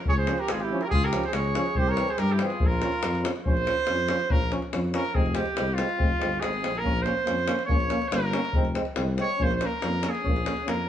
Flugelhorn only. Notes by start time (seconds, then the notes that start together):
0.08 G#4
0.18 G#4
0.39 G4
0.52 F4
0.64 E4
0.86 G4
0.93 F4
1.04 G4
1.27 G#4
1.35 G#4
1.79 G4
1.88 A#4
2.09 G#4
2.21 G4
2.34 E4
2.43 F4
2.67 F4